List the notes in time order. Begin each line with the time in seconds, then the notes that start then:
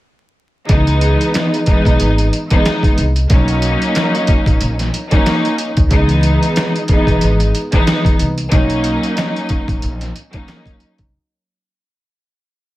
0.67 C#2 E3 G#3 B3 D#4, kick, closed hi-hat
0.87 closed hi-hat
1.01 closed hi-hat
1.21 closed hi-hat
1.34 snare, closed hi-hat
1.54 closed hi-hat
1.66 E3 G#3 B3 D#4, kick, closed hi-hat
1.85 B1, kick, closed hi-hat
2.00 G#1, closed hi-hat
2.18 closed hi-hat
2.33 closed hi-hat
2.50 E3 G#3 B3 D#4, kick, closed hi-hat
2.65 snare, closed hi-hat
2.83 kick, closed hi-hat
2.98 C2, closed hi-hat
3.16 closed hi-hat
3.29 B1 F#3 A#3 C#4 D#4, kick, closed hi-hat
3.48 closed hi-hat
3.62 closed hi-hat
3.82 closed hi-hat
3.95 snare, closed hi-hat
4.15 closed hi-hat
4.27 kick, closed hi-hat
4.46 A#1, kick, closed hi-hat
4.61 A#1, closed hi-hat
4.79 snare, closed hi-hat
4.94 closed hi-hat
5.10 F#3 A#3 C#4 D#4, kick, closed hi-hat
5.26 snare, closed hi-hat
5.45 closed hi-hat
5.58 closed hi-hat
5.77 D2, kick, closed hi-hat
5.89 C#2 E3 G#3 B3 D#4, kick, closed hi-hat
6.09 closed hi-hat
6.23 closed hi-hat
6.43 closed hi-hat
6.56 snare, closed hi-hat
6.76 closed hi-hat
6.88 E3 G#3 B3 D#4, kick, closed hi-hat
7.07 B1, kick, closed hi-hat
7.21 G#1, closed hi-hat
7.40 closed hi-hat
7.55 closed hi-hat
7.71 E3 G#3 B3 D#4, kick, closed hi-hat
7.87 snare, closed hi-hat
8.05 kick, closed hi-hat
8.19 C2, closed hi-hat
8.38 closed hi-hat
8.50 B1 F#3 A#3 C#4 D#4, kick, closed hi-hat
8.70 closed hi-hat
8.84 closed hi-hat
9.03 closed hi-hat
9.17 snare, closed hi-hat
9.36 closed hi-hat
9.49 kick, closed hi-hat
9.68 A#1, kick, closed hi-hat
9.82 A#1, closed hi-hat
10.01 snare, closed hi-hat
10.16 closed hi-hat
10.32 F#3 A#3 C#4 D#4, kick, closed hi-hat
10.48 snare, closed hi-hat
10.66 kick, closed hi-hat
10.80 closed hi-hat
10.98 C2, kick, closed hi-hat